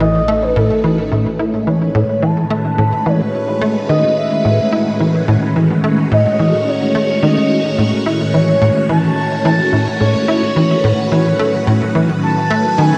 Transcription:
Already playing: A1 D#3 A3 C#4 F#4 B4 D#5
0.00 E3
0.28 A3
0.42 B4
0.56 A2 A4
0.84 E3
1.12 A2
1.27 D#3
1.39 C#4 E4
1.47 G#3
1.58 B4
1.67 E3 C#5
1.95 A2
2.22 E3 A5
2.39 F#4
2.50 A3
2.78 A2
3.06 E3 C#5
3.61 A3
3.89 D#3 D#5
4.17 E5
4.45 A2
4.73 E4
5.00 E3
5.28 A2
5.56 E3
5.84 A3
6.03 C#5
6.12 A2 D#5
6.39 E3
6.67 C#5
6.95 A3
7.23 D#3 D#5
7.78 A2
8.06 E4
8.34 E3 C#5
8.62 A2
8.89 E3 A5
9.45 E3 A5
9.73 A2
10.01 A2 C#5
10.28 E4
10.47 B4
10.56 E3
10.84 A2
11.12 E3 C#5
11.19 F#3
11.39 A3
11.67 A2
11.95 E3
12.23 A5
12.50 A3
12.78 D#3 G#5

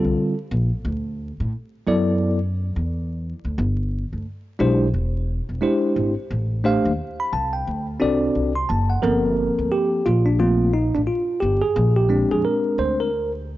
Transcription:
Already playing: D3 G3 C4 F4 A4
0.04 C2
0.51 A#1
0.85 D2
1.40 A2
1.87 F#2 F#3 B3 E4 A4 D5
2.76 E2
3.45 D2
3.58 G1
4.13 D2
4.59 B1 G#3 D4 E4 G4 C5
4.94 E1
5.49 E1
5.61 G#3 D4 E4 G4 C5
5.96 G#1
6.30 A1
6.64 A3 D4 G4 C5 F5
6.85 D#2
7.20 B5
7.33 C2 A5
7.53 G5
7.67 D2
8.00 C2 C4 D4 F#4 A4 D5
8.35 C2
8.55 C6
8.69 F#1 A5
8.90 F#5
9.02 G1 F3 A#3 C4 A4 A#4
9.59 D2
9.72 G4
10.06 A#1 F4
10.26 D4
10.39 F3 A3 A#3 C4 F4
10.74 D#4
10.95 A1 D4
11.07 F4
11.40 G1 G4
11.61 G#4
11.76 A#1
11.96 G4
12.09 G#3 C4 D4
12.31 F2 G#4
12.45 A#4
12.78 D2 C5
13.00 A#4

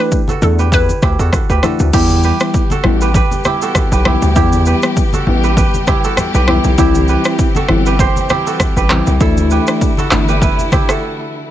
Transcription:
Already playing: E3 A3 E4 G4 A4 B4
0.00 D4 E4 B4
0.12 kick, shaker
0.28 F#4 A4, high conga, shaker
0.42 E2 E3 A3 D4 E4 A4, low conga, shaker
0.59 G4 B4, shaker
0.72 E4 B4, kick, low conga, shaker
0.89 high conga, shaker
1.02 D2 E4 G4, kick, cross-stick, high conga, shaker
1.19 E2 F#4 A4, shaker
1.32 kick, cross-stick, low conga, shaker
1.50 D2 G4 B4, shaker
1.63 E3 A3 D4 E4 F#4 A4, cross-stick, high conga, low conga, shaker
1.79 D2, high conga, shaker
1.93 E2 E3 G3 B3 E4 G4, kick, crash, shaker
2.10 high conga, shaker
2.23 G4 B4, shaker
2.40 E3 G3 B3 E4, cross-stick, shaker
2.54 kick, shaker
2.70 F#4 A4, high conga, shaker
2.84 A1 E3 G3 B3 E4, cross-stick, low conga
3.01 G4 B4, shaker
3.14 G4 B4, kick, low conga, shaker
3.31 high conga, shaker
3.44 E4 G4, cross-stick, high conga, shaker
3.62 F#4 A4, shaker
3.75 kick, cross-stick, low conga, shaker
3.92 B1 G4 B4, shaker
4.05 E3 G3 B3 E4 G4, cross-stick, high conga, low conga
4.22 D2, high conga, shaker
4.36 E2 E3 G3 B3 E4 G4, kick, shaker
4.52 high conga, shaker
4.66 G4 B4, shaker
4.82 E3 G3 B3 E4, cross-stick, shaker
4.97 kick, shaker
5.13 F#4 A4, high conga, shaker
5.27 A1 E3 G3 B3 E4, low conga
5.44 G4 B4, shaker
5.57 G4 B4, kick, low conga, shaker
5.74 high conga, shaker
5.87 E4 G4, kick, cross-stick, high conga, shaker
6.04 F#4 A4, shaker
6.17 cross-stick, low conga, shaker
6.34 B1 G4 B4, shaker
6.48 E3 G3 B3 E4 G4, cross-stick, high conga, low conga
6.64 B1, high conga, shaker
6.78 C2 E3 G3 C4 E4 G4, kick, shaker
6.95 high conga, shaker
7.08 G4 B4, shaker
7.24 E3 G3 C4 E4, cross-stick, shaker
7.39 kick, shaker
7.55 F#4 A4, high conga, shaker
7.68 G1 E3 G3 C4 E4, cross-stick, low conga
7.86 G4 B4, shaker
7.99 G4 C5, kick, low conga, shaker
8.16 high conga, shaker
8.29 E4 G4, cross-stick, high conga, shaker
8.47 F#4 A4, shaker
8.60 kick, cross-stick, low conga, shaker
8.77 A1 G4 B4, shaker
8.90 E3 G3 C4 E4 G4, cross-stick, clap, high conga, low conga
9.07 C2, high conga, shaker
9.20 D2 D3 E3 A3 D4 E4 A4, kick, shaker
9.37 high conga, shaker
9.51 G4 B4, shaker
9.67 E3 A3 D4 E4, cross-stick, shaker
9.81 kick, shaker
9.97 F#4 A4, high conga, shaker
10.11 G1 E3 A3 D4 E4, cross-stick, clap, low conga, shaker
10.28 G4 B4, shaker
10.42 E4 B4, kick, low conga, shaker
10.59 high conga, shaker
10.72 E4 G4, kick, cross-stick, high conga, shaker
10.89 F#4 A4, cross-stick, shaker

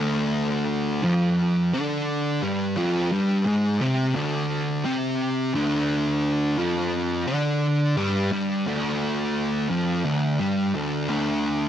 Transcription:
0.00 D2 D3
1.03 F2 F3
1.73 D3 D4
2.42 G2 G3
2.77 F2 F3
3.12 G2 G3
3.46 G#2 G#3
3.81 C3 C4
4.15 D2 D3
4.85 C3 C4
5.54 D2 D3
6.58 F2 F3
7.27 D3 D4
7.97 G2 G3
8.32 G2 G3
8.66 D2 D3
9.70 F2 F3
10.05 D2 D3
10.40 G2 G3
10.75 D2 D3
11.09 D2 D3

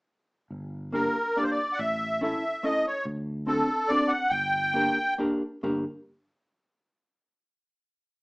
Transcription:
0.51 G1
0.92 A#3 D4 F4 G4 A#4
1.37 A#3 D4 F4 G4 D5
1.44 C5
1.51 D5
1.72 F#5
1.78 A1 E5
2.21 A3 C#4 E4 A4 E5
2.63 A3 C#4 E4 A4 D#5
2.87 C#5
3.05 D2
3.47 C4 D4 F#4 A4
3.88 C4 D4 F#4 D5
3.93 A4
4.08 F#5
4.30 G1 G5
4.74 A#3 D4 G4 A#4
5.18 A#3 D4 G4 A#4
5.63 G1 A#3 D4 G4 A#4

